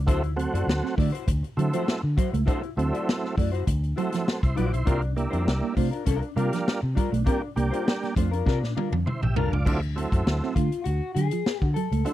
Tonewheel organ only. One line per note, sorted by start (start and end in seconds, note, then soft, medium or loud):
0.06 0.22 F#3 medium
0.06 0.23 A3 medium
0.06 0.23 C4 medium
0.06 0.23 E4 medium
0.36 0.95 F#3 medium
0.36 0.95 A3 medium
0.36 0.95 C4 medium
0.36 0.96 F#4 medium
1.57 2.02 F#3 medium
1.57 2.01 A3 medium
1.57 2.02 C4 medium
1.57 2.02 E4 medium
2.47 2.62 F#3 medium
2.47 2.62 A3 medium
2.47 2.62 C4 medium
2.47 2.62 E4 medium
2.77 3.35 F#3 medium
2.77 3.36 A3 medium
2.77 3.36 C4 medium
2.77 3.36 E4 medium
3.97 4.42 F#3 medium
3.97 4.41 A3 medium
3.97 4.42 C4 medium
3.97 4.27 E4 medium
4.43 4.56 E4 medium
4.43 4.56 C5 medium
4.57 4.72 F#4 medium
4.57 4.72 D5 medium
4.73 5.02 E4 medium
4.73 5.01 C5 medium
4.86 5.02 G3 medium
4.86 5.02 A#3 medium
4.86 5.02 D4 medium
4.86 5.02 F4 medium
5.17 5.75 G3 medium
5.17 5.75 A#3 medium
5.17 5.75 D4 medium
5.17 5.75 E4 medium
6.37 6.81 G3 medium
6.37 6.81 A#3 medium
6.37 6.81 D4 medium
6.37 6.81 F4 medium
7.26 7.42 G3 medium
7.26 7.42 A#3 medium
7.26 7.42 D4 medium
7.26 7.42 G4 medium
7.56 8.15 G3 medium
7.56 8.15 A#3 medium
7.56 8.15 D4 medium
7.56 8.15 G4 medium
9.06 9.22 E4 soft
9.06 9.21 C5 medium
9.22 9.36 G4 medium
9.22 9.36 E5 medium
9.37 9.52 A4 medium
9.37 9.52 F5 medium
9.52 9.81 F4 medium
9.52 9.81 D5 medium
9.65 9.81 F#3 medium
9.65 9.81 A3 medium
9.65 9.81 C4 medium
9.65 9.81 E4 medium
9.96 10.54 F#3 medium
9.96 10.54 A3 medium
9.96 10.54 C4 medium
9.96 10.54 E4 medium
12.05 12.13 F#3 medium
12.05 12.13 A3 medium
12.05 12.13 C4 medium
12.05 12.13 E4 medium